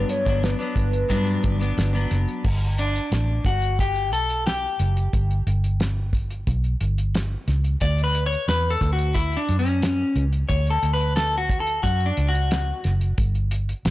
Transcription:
Already playing: clean electric guitar G2 F#3 B3 D4
0.09 soft synth lead C#5, closed hi-hat
0.25 fingered electric bass G1, clean electric guitar F#3 B3 D4, kick, closed hi-hat
0.43 soft synth lead B4, snare, closed hi-hat
0.59 clean electric guitar F#3 B3 D4, closed hi-hat
0.76 fingered electric bass G1, soft synth lead B4, kick, closed hi-hat
0.93 closed hi-hat
1.09 clean electric guitar G2 F#3 B3 D4, fingered electric bass G2, kick, closed hi-hat
1.27 closed hi-hat
1.43 fingered electric bass G1, kick, closed hi-hat
1.60 clean electric guitar F#3 B3 D4, closed hi-hat
1.77 fingered electric bass G1, snare, closed hi-hat
1.93 clean electric guitar F#3 B3 D4, closed hi-hat
2.11 fingered electric bass F#1, snare, closed hi-hat
2.28 closed hi-hat
2.45 fingered electric bass G1, kick, crash
2.78 clean electric guitar D4, closed hi-hat
2.96 closed hi-hat
3.12 fingered electric bass A1, snare, closed hi-hat
3.45 fingered electric bass G1, clean electric guitar F#4, kick, closed hi-hat
3.62 closed hi-hat
3.79 clean electric guitar G4, kick, closed hi-hat
3.96 closed hi-hat
4.12 fingered electric bass B1, clean electric guitar A4, closed hi-hat
4.30 closed hi-hat
4.46 clean electric guitar G4, snare, closed hi-hat
4.79 fingered electric bass F#1, closed hi-hat
4.97 closed hi-hat
5.13 fingered electric bass G1, kick, closed hi-hat
5.31 closed hi-hat
5.47 fingered electric bass G1, closed hi-hat
5.64 closed hi-hat
5.80 snare, closed hi-hat
6.13 kick, closed hi-hat
6.31 closed hi-hat
6.47 fingered electric bass B1, kick, closed hi-hat
6.64 closed hi-hat
6.80 fingered electric bass G1, closed hi-hat
6.98 closed hi-hat
7.15 snare, closed hi-hat
7.48 fingered electric bass C#2, snare, closed hi-hat
7.64 closed hi-hat
7.81 fingered electric bass D2, clean electric guitar D5, kick, closed hi-hat
7.98 closed hi-hat
8.04 clean electric guitar B4
8.15 closed hi-hat
8.26 clean electric guitar C#5
8.32 closed hi-hat
8.48 fingered electric bass E2, clean electric guitar B4, snare, closed hi-hat
8.70 clean electric guitar A4
8.81 fingered electric bass D2, kick, closed hi-hat
8.93 clean electric guitar F#4
8.99 closed hi-hat
9.14 clean electric guitar E4, kick, closed hi-hat
9.32 closed hi-hat
9.37 clean electric guitar D4
9.49 fingered electric bass F#2, closed hi-hat
9.59 clean electric guitar C#4
9.66 closed hi-hat
9.82 snare, closed hi-hat
10.16 fingered electric bass C#2, closed hi-hat
10.33 closed hi-hat
10.48 fingered electric bass D2, clean electric guitar C#5, kick, closed hi-hat
10.67 clean electric guitar A4, closed hi-hat
10.83 fingered electric bass D2, closed hi-hat
10.93 clean electric guitar B4
11.01 closed hi-hat
11.16 clean electric guitar A4, snare, closed hi-hat
11.38 clean electric guitar F#4
11.50 kick, closed hi-hat
11.60 clean electric guitar A4
11.67 closed hi-hat
11.83 fingered electric bass F#2, clean electric guitar F#4, kick, closed hi-hat
12.00 closed hi-hat
12.06 clean electric guitar D4
12.17 fingered electric bass C#2, closed hi-hat
12.29 clean electric guitar F#4
12.35 closed hi-hat
12.51 snare, closed hi-hat
12.84 fingered electric bass F#1, snare, closed hi-hat
13.01 closed hi-hat
13.18 fingered electric bass G1, kick, closed hi-hat
13.35 closed hi-hat
13.51 closed hi-hat
13.69 closed hi-hat
13.85 fingered electric bass A1, snare, closed hi-hat

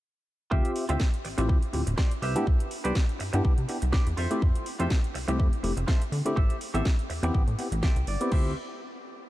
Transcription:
0.51 analog synth bass D2, tine electric piano C4 F4 G4 E5, clean electric guitar F4 G4 C5 E5, kick
0.65 closed hi-hat
0.76 open hi-hat
0.89 analog synth bass D2, tine electric piano C4 E4 F4 G4, clean electric guitar F4 G4 C5 E5, closed hi-hat
1.00 kick, snare
1.14 closed hi-hat
1.25 analog synth bass A1, muted clean electric guitar stroke, open hi-hat
1.38 analog synth bass A1, tine electric piano C4 E4 F4 G4, muted clean electric guitar stroke, closed hi-hat
1.48 analog synth bass D2, tine electric piano C4 E4 F4, muted clean electric guitar stroke, kick
1.62 closed hi-hat
1.73 analog synth bass D1, tine electric piano C4 E4 F4 G4, muted clean electric guitar stroke, open hi-hat
1.87 analog synth bass D1, muted clean electric guitar stroke, closed hi-hat
1.98 clean electric guitar F4 G4 C5 D5, kick, snare
2.11 closed hi-hat
2.22 analog synth bass C2, clean electric guitar G4 B4 C5 E5, open hi-hat
2.36 analog synth bass A2, tine electric piano B3 D4 E4 G4, closed hi-hat
2.47 analog synth bass C2, kick
2.60 closed hi-hat
2.71 open hi-hat
2.84 analog synth bass C2, tine electric piano B3 D4 E4 G4, clean electric guitar G4 B4 C5 D5, closed hi-hat
2.95 kick, snare
3.09 closed hi-hat
3.19 analog synth bass G2, muted clean electric guitar stroke, open hi-hat
3.33 analog synth bass G2, tine electric piano B3 D4 E4 G4, muted clean electric guitar stroke, closed hi-hat
3.44 analog synth bass C2, tine electric piano E4 G4, muted clean electric guitar stroke, kick
3.58 analog synth bass C3, closed hi-hat
3.68 tine electric piano B3 D4 E4 G4, muted clean electric guitar stroke, open hi-hat
3.82 analog synth bass C2, muted clean electric guitar stroke, closed hi-hat
3.92 clean electric guitar G4 B4 C5 D5, kick, snare
4.07 analog synth bass E2, closed hi-hat
4.17 analog synth bass F2, clean electric guitar F4 A4 C5 E5, open hi-hat
4.30 tine electric piano A3 C4 E4 G4, closed hi-hat
4.42 analog synth bass F2, kick
4.55 closed hi-hat
4.66 open hi-hat
4.79 analog synth bass F2, tine electric piano A3 C4 E4 G4, clean electric guitar F4 A4 C5 E5, closed hi-hat
4.90 kick, snare
5.04 closed hi-hat
5.14 analog synth bass C2, muted clean electric guitar stroke, open hi-hat
5.28 analog synth bass C2, tine electric piano A3 C4 E4 G4, muted clean electric guitar stroke, closed hi-hat
5.39 analog synth bass F2, tine electric piano A3 C4 E4, muted clean electric guitar stroke, kick
5.53 closed hi-hat
5.63 analog synth bass F1, tine electric piano A3 C4 E4 G4, muted clean electric guitar stroke, open hi-hat
5.77 analog synth bass F1, muted clean electric guitar stroke, closed hi-hat
5.87 clean electric guitar F4 A4 C5 E5, kick, snare
6.02 closed hi-hat
6.12 analog synth bass D3, muted clean electric guitar stroke, open hi-hat
6.25 analog synth bass D3, tine electric piano A3 C4 E4 G4, closed hi-hat
6.36 analog synth bass A1, clean electric guitar G4 A4 C5 E5, kick
6.50 closed hi-hat
6.61 open hi-hat
6.74 analog synth bass A1, tine electric piano B3 C4 E4 G4, clean electric guitar G4 A4 C5 E5, closed hi-hat
6.85 kick, snare
6.99 closed hi-hat
7.10 analog synth bass E2, muted clean electric guitar stroke, open hi-hat
7.23 analog synth bass E2, tine electric piano B3 C4 E4 G4, muted clean electric guitar stroke, closed hi-hat
7.34 analog synth bass A1, tine electric piano B3 C4 E4 G4, muted clean electric guitar stroke, kick
7.47 analog synth bass A2, closed hi-hat
7.59 tine electric piano B3 C4 E4 G4, muted clean electric guitar stroke, open hi-hat
7.72 analog synth bass A1, muted clean electric guitar stroke, closed hi-hat
7.83 clean electric guitar G4 A4 C5 E5 G5, kick, snare
7.96 analog synth bass C2, closed hi-hat
8.07 analog synth bass G1, clean electric guitar D5, muted clean electric guitar stroke, open hi-hat
8.21 tine electric piano B3 C4 E4 G4, closed hi-hat
8.31 analog synth bass D2, tine electric piano C4 E4 F4 G4, clean electric guitar F4 G4 C5 E5, kick, crash

